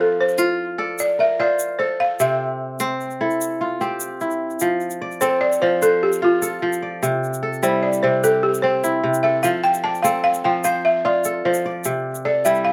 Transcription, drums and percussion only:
0.29 shaker soft
0.38 shaker medium
0.98 shaker medium
1.59 shaker medium
2.20 shaker medium
2.80 shaker medium
3.01 shaker soft
3.10 shaker soft
3.30 shaker soft
3.41 shaker medium
3.81 shaker soft
4.00 shaker medium
4.21 shaker soft
4.31 shaker soft
4.50 shaker soft
4.60 shaker medium
4.80 shaker soft
4.90 shaker soft
5.11 shaker soft
5.21 shaker medium
5.52 shaker medium
5.82 shaker medium
6.12 shaker medium
6.42 shaker medium
6.73 shaker medium
7.03 shaker medium
7.24 shaker soft
7.34 shaker soft
7.53 shaker soft
7.63 shaker medium
7.93 shaker soft
8.24 shaker medium
8.54 shaker medium
8.84 shaker medium
9.14 shaker medium
9.43 shaker medium
9.64 shaker soft
9.74 shaker soft
9.95 shaker soft
10.05 shaker medium
10.34 shaker soft
10.64 shaker medium
11.24 shaker medium
11.54 shaker medium
11.84 shaker medium
12.15 shaker medium
12.45 shaker medium
12.55 shaker soft

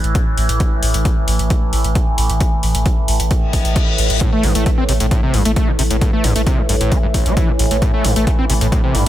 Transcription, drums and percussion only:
0.04 closed hi-hat medium
0.15 kick loud
0.15 closed hi-hat medium
0.38 open hi-hat loud
0.49 closed hi-hat medium
0.60 kick loud
0.60 closed hi-hat medium
0.83 open hi-hat loud
0.94 closed hi-hat medium
1.05 kick loud
1.05 closed hi-hat medium
1.28 open hi-hat loud
1.39 closed hi-hat medium
1.50 kick loud
1.50 closed hi-hat medium
1.73 open hi-hat loud
1.84 closed hi-hat medium
1.95 kick loud
1.95 closed hi-hat medium
2.18 open hi-hat loud
2.30 closed hi-hat medium
2.40 kick loud
2.40 closed hi-hat medium
2.63 open hi-hat loud
2.75 closed hi-hat medium
2.86 kick loud
2.86 closed hi-hat medium
3.08 open hi-hat loud
3.20 closed hi-hat medium
3.31 kick loud
3.31 closed hi-hat medium
3.53 kick medium
3.53 open hi-hat loud
3.65 closed hi-hat medium
3.76 kick loud
3.76 closed hi-hat medium
3.98 open hi-hat loud
4.10 closed hi-hat medium
4.21 kick loud
4.21 closed hi-hat medium
4.43 open hi-hat loud
4.55 closed hi-hat medium
4.66 kick loud
4.66 closed hi-hat medium
4.89 open hi-hat loud
5.00 closed hi-hat medium
5.11 kick loud
5.11 closed hi-hat medium
5.34 open hi-hat loud
5.45 closed hi-hat medium
5.56 kick loud
5.56 closed hi-hat medium
5.79 open hi-hat loud
5.91 closed hi-hat medium
6.01 kick loud
6.01 closed hi-hat medium
6.24 open hi-hat loud
6.36 closed hi-hat medium
6.47 kick loud
6.47 closed hi-hat medium
6.69 open hi-hat loud
6.81 closed hi-hat medium
6.92 kick loud
6.92 closed hi-hat medium
7.14 kick medium
7.14 open hi-hat loud
7.26 closed hi-hat medium
7.37 kick loud
7.37 closed hi-hat medium
7.59 open hi-hat loud
7.71 closed hi-hat medium
7.82 kick loud
7.82 closed hi-hat medium
8.04 open hi-hat loud
8.16 closed hi-hat medium
8.27 kick loud
8.27 closed hi-hat medium
8.50 open hi-hat loud
8.61 closed hi-hat medium
8.72 kick loud
8.72 closed hi-hat medium
8.95 open hi-hat loud

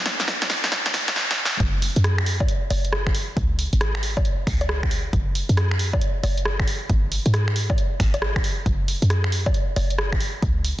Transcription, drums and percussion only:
0.06 snare medium
0.06 open hi-hat loud
0.20 snare medium
0.20 closed hi-hat medium
0.28 kick loud
0.28 snare loud
0.42 snare medium
0.42 closed hi-hat soft
0.50 snare loud
0.50 open hi-hat medium
0.64 snare medium
0.64 closed hi-hat medium
0.72 kick loud
0.72 snare loud
0.86 snare medium
0.94 snare loud
0.94 open hi-hat loud
1.08 snare medium
1.08 closed hi-hat medium
1.16 snare medium
1.31 snare medium
1.45 snare medium
1.60 kick loud
1.60 closed hi-hat medium
1.82 open hi-hat loud
1.96 closed hi-hat medium
2.04 cross-stick loud
2.04 closed hi-hat medium
2.18 finger snap medium
2.26 open hi-hat medium
2.40 kick loud
2.40 closed hi-hat soft
2.40 high bongo medium
2.48 closed hi-hat medium
2.70 open hi-hat loud
2.70 high bongo medium
2.85 closed hi-hat medium
2.93 cross-stick loud
3.07 finger snap medium
3.07 kick medium
3.15 open hi-hat medium
3.37 kick loud
3.37 closed hi-hat medium
3.59 open hi-hat loud
3.73 closed hi-hat medium
3.81 cross-stick loud
3.81 closed hi-hat medium
3.95 finger snap medium
4.03 open hi-hat loud
4.17 kick loud
4.17 closed hi-hat soft
4.17 high bongo medium
4.25 closed hi-hat medium
4.47 finger snap medium
4.47 kick loud
4.47 open hi-hat loud
4.61 closed hi-hat medium
4.61 high bongo medium
4.69 cross-stick loud
4.83 finger snap medium
4.83 kick medium
4.91 open hi-hat medium
5.13 kick loud
5.13 closed hi-hat medium
5.35 open hi-hat loud
5.49 closed hi-hat medium
5.57 cross-stick loud
5.57 closed hi-hat medium
5.71 finger snap medium
5.79 open hi-hat medium
5.93 kick loud
5.93 closed hi-hat soft
5.93 high bongo medium
6.01 closed hi-hat medium
6.23 open hi-hat loud
6.23 high bongo medium
6.37 closed hi-hat medium
6.45 cross-stick loud
6.59 finger snap medium
6.59 kick medium
6.67 open hi-hat medium
6.89 kick loud
6.89 closed hi-hat medium
7.12 open hi-hat loud
7.26 closed hi-hat medium
7.34 cross-stick loud
7.34 closed hi-hat medium
7.48 finger snap medium
7.56 open hi-hat medium
7.70 kick loud
7.70 closed hi-hat soft
7.70 high bongo medium
7.78 closed hi-hat medium
8.00 finger snap medium
8.00 kick loud
8.00 open hi-hat loud
8.14 closed hi-hat medium
8.14 high bongo medium
8.22 cross-stick loud
8.36 finger snap medium
8.36 kick medium
8.44 open hi-hat medium
8.66 kick loud
8.66 closed hi-hat medium
8.88 open hi-hat loud
9.02 closed hi-hat medium
9.10 cross-stick loud
9.10 closed hi-hat medium
9.24 finger snap medium
9.32 open hi-hat medium
9.46 kick loud
9.46 closed hi-hat soft
9.46 high bongo medium
9.54 closed hi-hat medium
9.76 open hi-hat loud
9.76 high bongo medium
9.90 closed hi-hat medium
9.98 cross-stick loud
10.12 finger snap medium
10.12 kick medium
10.20 open hi-hat medium
10.42 kick loud
10.42 closed hi-hat medium
10.64 open hi-hat loud

